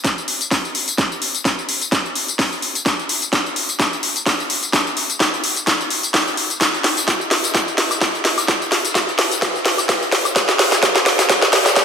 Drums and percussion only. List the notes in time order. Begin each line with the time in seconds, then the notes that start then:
0.04 kick, snare, closed hi-hat, tambourine
0.18 tambourine
0.28 open hi-hat
0.41 closed hi-hat, tambourine
0.51 kick, snare, open hi-hat, tambourine
0.65 tambourine
0.75 open hi-hat
0.88 closed hi-hat, tambourine
0.98 kick, snare, closed hi-hat, tambourine
1.12 tambourine
1.22 open hi-hat
1.35 closed hi-hat, tambourine
1.45 kick, snare, closed hi-hat, tambourine
1.59 tambourine
1.69 open hi-hat
1.82 closed hi-hat, tambourine
1.92 kick, snare, closed hi-hat, tambourine
2.06 tambourine
2.15 open hi-hat
2.28 closed hi-hat, tambourine
2.39 kick, snare, open hi-hat, tambourine
2.52 tambourine
2.62 open hi-hat
2.75 closed hi-hat, tambourine
2.86 kick, snare, closed hi-hat, tambourine
2.99 tambourine
3.09 open hi-hat
3.22 closed hi-hat, tambourine
3.33 kick, snare, closed hi-hat, tambourine
3.46 tambourine
3.56 open hi-hat
3.69 closed hi-hat, tambourine
3.80 kick, snare, closed hi-hat, tambourine
3.93 tambourine
4.03 open hi-hat
4.16 closed hi-hat, tambourine
4.26 kick, snare, open hi-hat, tambourine
4.40 tambourine
4.50 open hi-hat
4.63 closed hi-hat, tambourine
4.73 kick, snare, closed hi-hat, tambourine
4.87 tambourine
4.97 open hi-hat
5.10 closed hi-hat, tambourine
5.20 kick, snare, closed hi-hat, tambourine
5.34 tambourine
5.44 open hi-hat
5.57 closed hi-hat, tambourine
5.67 kick, snare, closed hi-hat, tambourine
5.81 tambourine
5.90 open hi-hat
6.03 closed hi-hat, tambourine
6.14 kick, snare, open hi-hat, tambourine
6.27 tambourine
6.37 open hi-hat
6.50 closed hi-hat, tambourine
6.61 kick, snare, closed hi-hat, tambourine
6.74 tambourine
6.84 snare, open hi-hat
6.97 closed hi-hat, tambourine
7.08 kick, snare, closed hi-hat, tambourine
7.21 tambourine
7.31 snare, open hi-hat, high woodblock
7.44 closed hi-hat, tambourine
7.55 kick, snare, closed hi-hat, tambourine
7.68 tambourine
7.78 snare, open hi-hat
7.91 closed hi-hat, tambourine, high woodblock
8.01 kick, snare, open hi-hat, tambourine
8.15 tambourine
8.25 snare, open hi-hat
8.38 closed hi-hat, tambourine, high woodblock
8.48 kick, snare, closed hi-hat, tambourine
8.62 tambourine
8.72 snare, open hi-hat
8.85 closed hi-hat, tambourine
8.95 kick, snare, closed hi-hat, tambourine
9.09 tambourine
9.19 snare, open hi-hat, high woodblock
9.32 closed hi-hat, tambourine
9.42 kick, snare, closed hi-hat, tambourine
9.56 tambourine
9.65 snare, open hi-hat
9.78 closed hi-hat, tambourine, high woodblock
9.89 kick, snare, open hi-hat, tambourine
10.02 tambourine
10.12 snare, open hi-hat
10.25 closed hi-hat, tambourine, high woodblock
10.36 kick, snare, closed hi-hat, tambourine
10.49 snare, tambourine
10.59 snare, open hi-hat
10.72 snare, closed hi-hat, tambourine
10.83 kick, snare, closed hi-hat, tambourine
10.96 snare, tambourine
11.06 snare, open hi-hat, high woodblock
11.19 snare, closed hi-hat, tambourine
11.29 kick, snare, closed hi-hat, tambourine
11.42 snare, tambourine
11.53 snare, open hi-hat
11.66 snare, closed hi-hat, tambourine, high woodblock
11.76 kick, snare, open hi-hat, tambourine